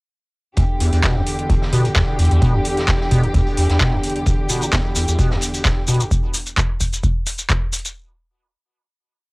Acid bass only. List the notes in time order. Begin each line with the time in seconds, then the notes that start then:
0.57 E2
0.80 E2
0.93 E2
1.04 B2
1.16 E2
1.50 E1
1.73 B2
1.85 A2
1.96 E2
2.19 E2
2.31 E2
2.42 B2
2.54 E2
2.88 E1
3.11 B2
3.23 A2
3.34 E2
3.57 E2
3.70 E2
3.81 B2
3.93 E2
4.27 E1
4.50 B2
4.62 A2
4.73 E2
4.96 E2
5.08 E2
5.19 B2
5.31 E2
5.65 E1
5.88 B2
6.00 A2